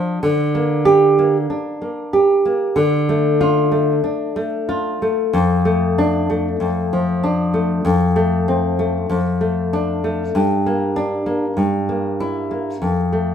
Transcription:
nylon-string guitar
Already playing: F3 D4
0.23 D3
0.55 A#3
0.85 G4
1.18 A#3
1.50 D4
1.81 A#3
2.13 G4
2.45 A#3
2.76 D3
3.09 A3
3.41 F4
3.71 A3
4.04 D4
4.36 A3
4.69 F4
5.02 A3
5.33 F2
5.65 A3
5.98 D4
6.30 A3
6.60 F2
6.93 F3
7.24 D4
7.54 A3
7.85 F2
8.16 A3
8.48 C4
8.79 A3
9.10 F2
9.41 A3
9.73 D4
10.04 A3
10.35 G2
10.66 A#3
10.96 D4
11.26 A#3
11.57 G2
11.89 A#3
12.20 E4
12.51 A#3
12.82 F2
13.13 A3

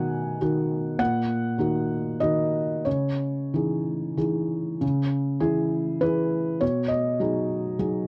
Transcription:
felt piano
Already playing: B2 D#3 D#4 F#4 F#5 G#5
0.41 D#3 D#4 F#4
0.99 A#2 F#5
1.58 D#3 D#4 F#4
2.20 D#3 D#4 F#4 D#5
2.85 C#3 C#5
3.54 E3 D#4 G#4
4.17 E3 D#4 G#4
4.81 C#3
5.40 E3 E4 G#4
6.01 E3 E4 G#4 B4
6.61 B2 C#5
6.88 D#5
7.20 F#3 D#4 G#4
7.79 F#3 D#4 G#4

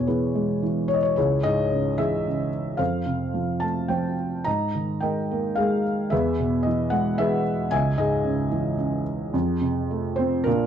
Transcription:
felt piano
Already playing: E2 B2 E4 G#4 C#5
0.07 E3 E4 G#4 B4
0.35 G#3
0.63 E3
0.88 C#5
0.94 D#5
1.03 C#5
1.16 C#2 E4 G#4 C#5
1.43 G#2 G#4 D#5
1.71 C#3
1.98 E3 G#4 E5
2.27 C#3
2.77 F2 A4 C5 F5
3.06 C3
3.34 F3
3.60 A3 A5
3.88 F3 C5 G5
4.44 G#2 D#5 A#5
4.75 D#3
5.00 G#3 A#4 D#5 G5
5.31 A#3
5.55 G#3 G#4 A#4 F5
6.10 E2 G#4 B4 E5
6.39 B2
6.63 E3 D#5
6.90 G#3 F#5
7.18 E3 G#4 B4 E5
7.71 C#2 D#5 E5 G#5
7.98 G#2 G#4 D#5
8.24 C#3
8.52 E3
8.78 C#3
9.34 F2
9.61 C3
9.91 A3
10.16 C4 C5
10.44 A#2 D4 F4 A#4

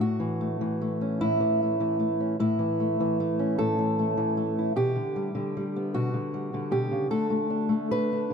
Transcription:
steel-string acoustic guitar
0.00 A2 F#4
0.20 E3
0.41 A3
0.61 E3
0.81 A3
1.01 C#4
1.21 A2 E4
1.40 E3
1.63 A3
1.80 E3
2.00 A3
2.20 C#4
2.40 A2 E4
2.59 E3
2.80 A3
3.00 E3
3.20 A3
3.39 C#4
3.58 A2 A4
3.79 E3
3.99 A3
4.17 E3
4.37 A3
4.58 E4
4.76 B2 G4
4.96 D3
5.16 G3
5.35 D3
5.57 G3
5.76 B3
5.94 B2 F#4
6.14 D3
6.34 G3
6.54 D3
6.71 B2 G4
6.91 C#3
7.11 D3 A3 D4 A4
7.30 A3
7.50 D4
7.69 A3
7.91 D4 B4
8.12 D4
8.30 D3

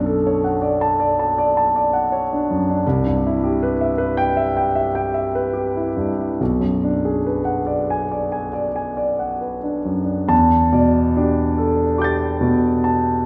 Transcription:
grand piano
Already playing: B1 F#2 D4
0.06 A4
0.27 C#5
0.44 F#5
0.62 D5
0.81 A5
1.00 D5
1.19 A5
1.38 D5
1.57 A5
1.76 D5
1.93 F#5
2.12 C#5
2.33 D4
2.50 F#2
2.70 D4
2.87 C2
3.06 G2
3.27 E4
3.44 G4
3.63 B4
3.81 E5
3.98 B4
4.17 G5
4.37 E5
4.57 G5
4.76 E5
4.95 G5
5.14 E5
5.35 B4
5.53 G4
5.77 E4
5.97 G2
6.18 E4
6.41 B1
6.60 F#2
6.84 D4
7.05 G#4
7.26 B4
7.45 F#5
7.67 D5
7.90 G#5
8.12 D5
8.32 G#5
8.53 D5
8.76 G#5
8.97 D5
9.19 F#5
9.41 B4
9.63 D4
9.85 F#2
10.05 D4
10.28 E2 A5
10.73 B2 D5
11.16 D4 G4
11.58 A4
11.98 G4 D6 G6
12.04 A6
12.41 B2
12.84 A5

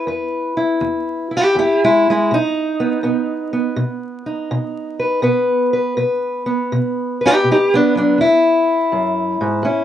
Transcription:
steel-string acoustic guitar
Already playing: E4
0.07 E2 B4
0.57 E4
0.81 E2
1.31 E4
1.37 E4 G4
1.55 E2 G4
1.59 E4
1.84 G#3 E4
2.10 G#3 E4
2.31 B2 D#4
2.80 B3
3.03 B2 B3
3.53 B3
3.76 B2
4.26 D#4
4.51 B2
4.99 B4
5.22 B2 B3 B4
5.73 B4
5.97 B2 B4
6.46 B3
6.72 B2
7.21 B4
7.26 D#4 G4
7.44 B2
7.51 D#4 G4
7.74 B3 D4
7.95 F#3 B3 D4
8.18 E2 E4
8.92 F#2
9.41 G#2
9.63 A2 C#4 E4

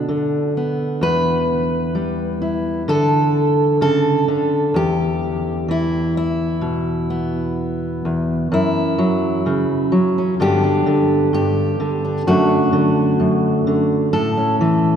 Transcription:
steel-string acoustic guitar
Already playing: D4
0.09 D3
0.57 B3
1.01 E2 B4
1.95 G3
2.42 E4
2.88 D3 A4
3.81 C#3 A4
4.28 D3
4.74 E2 G4
5.68 E3 E4
6.17 E4
6.61 B2
7.10 B3
8.05 E2
8.52 F#2 E4
8.98 F#3
9.46 C#3
9.92 F#3
10.18 C#4
10.40 G2 D3 B3 D4 G4
10.64 D4
10.87 D3
11.33 G2 G4
11.80 D3
12.05 D4
12.27 F#2 D3 A3 D4 F#4
12.73 D3
13.20 F#2
13.67 D3
14.13 A2 A4
14.37 C#4
14.61 E3

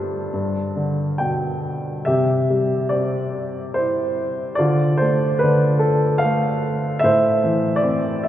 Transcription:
upright piano
Already playing: G2 G3 F4 A4 C5
0.33 G2
0.76 D3
1.18 B2 G5
2.05 C3 G4 E5
2.50 G3
2.89 C4 D5
3.74 E4 C5
4.55 D3 F4 D5
4.97 A3 C5
5.39 B4
5.43 D3
5.79 A4
6.18 F5
6.24 A3
6.99 E5
7.04 A2 C5
7.44 E3
7.76 D5
7.83 C4
8.23 E5

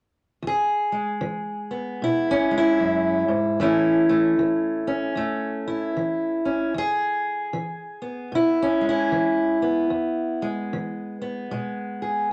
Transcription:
steel-string acoustic guitar
0.42 E2
0.47 G#4
0.92 G#3
1.21 E3
1.71 B3
2.02 B2 E4
2.31 C#4
2.51 G#3
2.58 E4
2.80 F#2
3.28 G#2
3.60 A2 E3 A3 C#4 E4
4.09 A3
4.39 E3
4.87 C#4
5.15 E2 A3
5.68 E4
5.97 E3
6.45 C#4
6.74 E2 G#4
7.53 E3
8.02 B3
8.32 B2 E4
8.62 C#4
8.81 G#3
8.89 E4
9.12 E3
9.62 B3
9.90 E2
10.42 G#3
10.73 E3
11.22 B3
11.51 B2 G#3
12.02 G#4

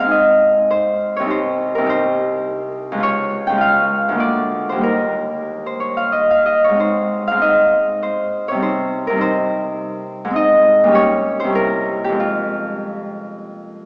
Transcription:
harp
Already playing: C5
0.00 G#2 C4 F5
0.05 D#4 G#4
0.11 D#5
0.71 C5
1.16 C2 C#5
1.22 C4 D#4
1.27 G4 C5
1.75 C2 A#4
1.81 C4 D#4
1.86 G4 C5
2.92 C#2 G#3
2.97 C#4 F4
3.03 C#5
3.47 C#2 G5
3.52 G#3 C#4
3.58 F4 F5
4.09 D2 G#3
4.15 A#3 F4
4.20 D5
4.69 D#2 C5
4.76 G3 A#3
4.81 D#4 A#4
5.66 C5
5.80 C#5
5.97 F5
6.12 D#5
6.31 F5
6.46 D#5
6.64 C#5
6.69 G#2 G#3
6.75 C4 D#4
6.80 C5
7.27 G#2 F5
7.34 G#3 C4
7.39 D#4 D#5
8.03 C5
8.48 C3 C#5
8.54 G3 C4
8.60 D#4 C5
9.07 C3 A#4
9.12 G3 C4
9.18 D#4 C5
10.25 G#2 G#3
10.30 C4 D#4
10.36 D#5
10.84 A#2 G3
10.89 C#4 G4
10.95 C#5
11.40 C5
11.44 C3 G3
11.50 C#4 E4
11.55 A#4
12.04 G4
12.09 F2 G#3
12.14 C4
12.20 F4

